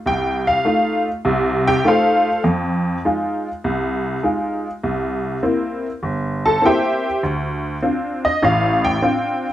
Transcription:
honky-tonk piano
0.06 C2 G5
0.47 F5
0.65 A3 D#4 F4
1.25 C2 C3
1.67 G4 G5
1.85 A3 D#4 F4 A4 C5 F5
2.44 F2
3.05 G#3 D#4 F4
3.64 C2
4.23 G#3 D#4 F4
4.83 C2
5.43 A#3 C4 E4
6.03 G1
6.46 A4 A5
6.62 A#3 C4 E4 G5
6.66 G4 C5 E5
7.23 D2
7.83 C4 D4 F4
8.25 D#5
8.42 A1 A2 F5
8.85 G5
9.02 C4 D4 F4

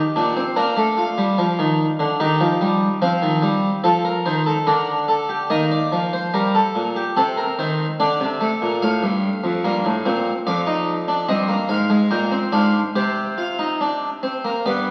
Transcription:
harpsichord
Already playing: G4
0.16 A#2 D4
0.37 C4
0.56 A#3 D4 A#4
0.77 A3
0.98 F4
1.18 G3
1.38 F3
1.59 D#3
1.99 D3
2.20 D#3 D#4 G4
2.40 F3
2.61 G3
3.02 F3 C4 F4
3.22 D#3
3.42 G3
3.84 F3 A4
4.05 A#4
4.26 D#3 C5
4.46 A4
4.67 D3 D4 A#4
5.08 A4
5.29 G4
5.50 D#3 A#3 D#5
5.71 D5
5.92 F3
6.13 C5
6.34 G3 A#4
6.55 A4
6.75 A#2
6.96 G4
7.17 C3 C4 A4
7.37 A#4
7.59 D#3 C5
8.00 D3 D4 D5
8.20 C3
8.41 A3
8.62 A#2
8.82 A2 F5
9.03 G2
9.44 F2
9.64 G2 A#3
9.85 A2
10.06 A#2 C4
10.47 F2 F4 D5
10.67 D#4
11.08 D4
11.29 G2 C4 D#5
11.48 A#3
11.69 G#2 F5
11.90 G#3
12.11 A#2 A#3 G5
12.32 C4
12.52 G#2 D4 F5
12.96 C3 G4 C5
13.38 F4
13.59 D#4
13.81 D4
14.23 C4
14.45 A#3
14.66 G2 B3 D5

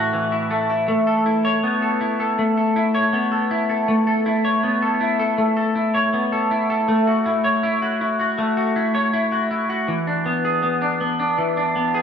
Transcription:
clean electric guitar
Already playing: A2 E3 A3 E4 F#4
0.13 E3
0.32 E4
0.51 A3
0.70 E4
0.88 A3
1.07 A4
1.26 E4
1.45 C#5
1.63 B3
1.82 A4
2.01 E4
2.20 A4
2.39 A3
2.57 A4
2.76 E4
2.95 C#5
3.13 B3
3.32 A4
3.51 E4
3.69 A4
3.88 A3
4.07 A4
4.26 E4
4.45 C#5
4.64 B3
4.82 A4
5.01 E4
5.19 A4
5.38 A3
5.57 A4
5.75 E4
5.94 C#5
6.13 B3
6.32 A4
6.51 E4
6.70 A4
6.88 A3
7.07 F#4
7.26 E4
7.44 C#5
7.63 E4
7.82 F#4
8.01 E4
8.20 F#4
8.38 A3
8.57 F#4
8.76 E4
8.95 C#5
9.13 E4
9.32 F#4
9.51 E4
9.70 F#4
9.88 E3
10.07 D4
10.26 B3
10.45 G#4
10.63 B3
10.82 D4
11.01 B3
11.20 D4
11.38 E3
11.57 D4
11.76 B3
11.95 G#4

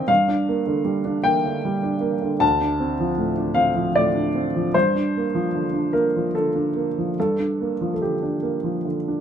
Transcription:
upright piano
Already playing: D#3 C4 D4 D#4 D#5 G5
0.08 G2 F5
0.28 D4
0.49 A#3
0.67 D3
0.85 G3
1.05 D4
1.24 A#3 G5
1.45 D3
1.65 G3
1.83 D4
2.01 A#3
2.22 D3
2.40 D2 A5
2.61 D4
2.80 C4
3.00 F3
3.17 A2
3.37 D4
3.55 C4 F5
3.76 F3
3.96 A2 D5
4.15 D4
4.35 C4
4.56 F3
4.74 G2 C5
4.95 D4
5.17 A#3
5.35 F3
5.55 D3
5.73 D4
5.93 A#3 A#4
6.16 F3
6.35 D3 A4
6.55 D4
6.76 A#3
6.98 F3
7.20 G2 A4
7.40 D4
7.61 A#3
7.81 F3
7.94 A4
8.02 D3 G4
8.23 D4
8.43 A#3
8.64 F3
8.85 D3
9.08 D4

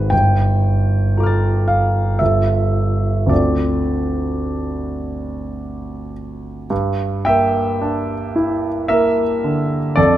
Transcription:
grand piano
Already playing: G#1 F#4 G#4 B4
0.10 G1 G5
1.17 F4 A4 A#5 D6
1.23 F6 A6
1.68 F5
2.19 G1 F4 A4 E5
3.26 D2 C4 D4 F4 D5
3.31 A4
6.70 G2
7.25 A#3 E5 G5
7.81 D4
8.36 E4
8.88 A#3 A#4 E5
9.44 D3
9.96 F2 A4 D5

